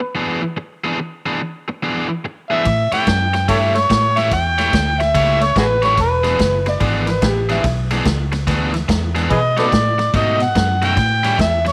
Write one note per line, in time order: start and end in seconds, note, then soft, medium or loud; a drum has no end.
0.00 muted overdriven electric guitar stroke soft
0.15 0.42 E3 medium
0.15 0.42 B3 medium
0.15 0.41 D4 medium
0.15 0.41 G#4 medium
0.42 muted overdriven electric guitar stroke soft
0.57 muted overdriven electric guitar stroke soft
0.84 0.98 E3 medium
0.84 0.98 B3 medium
0.84 0.98 D4 medium
0.84 0.98 G#4 medium
0.99 muted overdriven electric guitar stroke soft
1.26 1.40 E3 medium
1.26 1.40 B3 medium
1.26 1.40 D4 medium
1.26 1.40 G#4 loud
1.41 muted overdriven electric guitar stroke soft
1.68 muted overdriven electric guitar stroke soft
1.83 2.09 E3 medium
1.83 2.08 B3 medium
1.83 2.08 D4 medium
1.83 2.07 G#4 medium
2.08 muted overdriven electric guitar stroke soft
2.25 muted overdriven electric guitar stroke soft
2.50 2.66 E3 medium
2.50 2.65 B3 medium
2.50 2.65 D4 medium
2.50 2.66 G#4 medium
2.50 2.89 E5 loud
2.65 2.90 A2 medium
2.65 muted overdriven electric guitar stroke soft
2.65 kick medium
2.65 ride medium
2.92 3.06 A3 medium
2.92 3.07 E4 medium
2.92 3.07 G4 medium
2.92 3.07 C#5 medium
2.92 3.46 G5 medium
2.92 muted fingered electric bass stroke soft
2.92 snare soft
2.92 ride medium
3.07 3.47 F#2 medium
3.07 muted overdriven electric guitar stroke soft
3.07 kick medium
3.07 snare loud
3.07 ride medium
3.34 muted overdriven electric guitar stroke soft
3.34 snare soft
3.34 ride medium
3.49 3.89 G2 medium
3.49 3.75 A3 medium
3.49 3.75 E4 medium
3.49 3.74 G4 medium
3.49 3.57 A4 medium
3.49 3.58 C#5 medium
3.49 3.74 C#5 medium
3.49 3.78 E5 medium
3.49 kick medium
3.49 snare soft
3.49 ride medium
3.75 4.19 C#5 loud
3.75 muted overdriven electric guitar stroke soft
3.75 snare soft
3.75 ride medium
3.90 4.31 A2 medium
3.90 muted overdriven electric guitar stroke soft
3.90 kick medium
3.90 snare medium
3.90 ride medium
4.17 4.31 A3 medium
4.17 4.32 E4 medium
4.17 4.32 G4 medium
4.17 4.32 C#5 medium
4.17 4.32 E5 medium
4.17 snare soft
4.17 ride medium
4.31 4.72 E2 medium
4.31 5.02 G5 medium
4.31 muted overdriven electric guitar stroke soft
4.31 kick medium
4.31 snare soft
4.31 ride medium
4.58 4.72 A3 medium
4.58 4.73 E4 medium
4.58 4.73 G4 medium
4.58 4.73 C#5 loud
4.58 snare soft
4.58 ride medium
4.73 5.14 D2 medium
4.73 muted overdriven electric guitar stroke soft
4.73 kick medium
4.73 snare medium
4.73 ride medium
5.00 5.44 E5 medium
5.00 muted overdriven electric guitar stroke soft
5.00 snare soft
5.00 ride medium
5.14 5.55 C#2 medium
5.14 5.42 A3 medium
5.14 5.41 E4 medium
5.14 5.40 G4 loud
5.14 5.40 C#5 medium
5.14 kick medium
5.14 ride medium
5.41 5.57 C#5 medium
5.41 muted overdriven electric guitar stroke soft
5.41 snare soft
5.41 ride medium
5.56 5.97 A1 medium
5.56 5.64 F#4 medium
5.56 5.65 G#4 medium
5.56 5.82 B4 medium
5.56 muted overdriven electric guitar stroke soft
5.56 kick medium
5.56 snare loud
5.56 ride medium
5.82 5.98 A3 medium
5.82 5.98 E4 medium
5.82 5.98 G4 medium
5.82 5.98 C#5 medium
5.82 snare soft
5.82 ride medium
5.97 6.38 E1 medium
5.97 6.63 B4 medium
5.97 muted overdriven electric guitar stroke soft
5.97 kick medium
5.97 snare soft
5.97 ride medium
6.24 6.38 E3 medium
6.24 6.38 B3 medium
6.24 6.39 D4 medium
6.24 6.39 G#4 loud
6.24 snare soft
6.24 ride medium
6.39 6.80 F#1 medium
6.39 muted overdriven electric guitar stroke soft
6.39 kick medium
6.39 snare medium
6.39 ride medium
6.66 7.08 D5 medium
6.66 muted overdriven electric guitar stroke soft
6.66 snare soft
6.66 ride medium
6.80 7.21 G#1 medium
6.80 7.08 E3 medium
6.80 7.07 B3 medium
6.80 7.07 D4 medium
6.80 7.06 G#4 medium
6.80 kick medium
6.80 ride medium
7.05 7.07 A#4 soft
7.05 muted overdriven electric guitar stroke soft
7.05 snare soft
7.05 ride medium
7.10 7.23 B4 medium
7.22 7.63 A1 medium
7.22 7.50 G4 medium
7.22 muted overdriven electric guitar stroke soft
7.22 kick medium
7.22 snare loud
7.22 ride medium
7.49 7.63 E3 medium
7.49 7.63 B3 medium
7.49 7.64 D4 medium
7.49 7.65 E4 medium
7.49 7.64 G#4 medium
7.49 snare soft
7.49 ride medium
7.64 8.05 B1 medium
7.64 muted overdriven electric guitar stroke soft
7.64 kick medium
7.64 snare soft
7.64 ride medium
7.91 8.05 E3 medium
7.91 8.05 B3 medium
7.91 8.05 D4 medium
7.91 8.06 G#4 medium
7.91 snare soft
7.91 ride medium
8.05 8.46 C#2 medium
8.05 muted overdriven electric guitar stroke soft
8.05 kick medium
8.05 snare loud
8.05 ride medium
8.32 muted overdriven electric guitar stroke soft
8.32 snare soft
8.32 ride medium
8.47 8.88 D2 medium
8.47 8.74 E3 medium
8.47 8.73 B3 medium
8.47 8.73 D4 medium
8.47 8.72 G#4 medium
8.47 kick medium
8.47 snare soft
8.47 ride medium
8.73 muted overdriven electric guitar stroke soft
8.73 snare soft
8.73 ride medium
8.89 9.30 E2 medium
8.89 muted overdriven electric guitar stroke soft
8.89 kick medium
8.89 snare medium
8.89 ride medium
9.15 9.31 E3 medium
9.15 9.30 B3 medium
9.15 9.30 D4 medium
9.15 9.31 G#4 medium
9.15 snare soft
9.15 ride medium
9.30 9.71 B2 medium
9.30 9.39 G#4 medium
9.30 9.39 B4 medium
9.30 9.56 D#5 medium
9.30 muted overdriven electric guitar stroke soft
9.30 kick medium
9.30 ride medium
9.57 9.71 B2 medium
9.57 9.71 A3 medium
9.57 9.71 D#4 medium
9.57 9.71 F#4 medium
9.57 9.66 A4 medium
9.57 9.67 B4 medium
9.57 10.11 D5 medium
9.57 snare soft
9.57 ride medium
9.72 10.13 A2 medium
9.72 muted overdriven electric guitar stroke soft
9.72 kick medium
9.72 snare medium
9.72 ride medium
9.98 muted overdriven electric guitar stroke soft
9.98 snare soft
9.98 ride medium
10.14 10.54 G#2 medium
10.14 10.41 B2 medium
10.14 10.40 A3 medium
10.14 10.40 D#4 medium
10.14 10.39 F#4 medium
10.14 10.40 D#5 medium
10.14 kick medium
10.14 snare soft
10.14 ride medium
10.40 10.80 F#5 loud
10.40 muted overdriven electric guitar stroke medium
10.40 snare soft
10.40 ride medium
10.55 10.96 F#2 medium
10.55 muted overdriven electric guitar stroke soft
10.55 kick medium
10.55 snare medium
10.55 ride medium
10.82 10.97 B2 medium
10.82 10.97 A3 medium
10.82 10.97 D#4 medium
10.82 10.97 F#4 medium
10.82 11.42 G5 loud
10.82 snare soft
10.82 ride medium
10.97 11.38 A2 medium
10.97 muted overdriven electric guitar stroke soft
10.97 kick medium
10.97 snare soft
10.97 ride medium
11.24 11.37 A2 medium
11.24 11.38 G3 medium
11.24 11.38 C#4 medium
11.24 11.38 E4 loud
11.24 snare soft
11.24 ride medium
11.38 11.72 E2 medium
11.38 11.67 E5 medium
11.38 muted overdriven electric guitar stroke soft
11.38 kick medium
11.38 snare medium
11.38 ride medium
11.65 11.72 C#5 medium
11.65 muted overdriven electric guitar stroke medium
11.65 snare soft
11.65 ride medium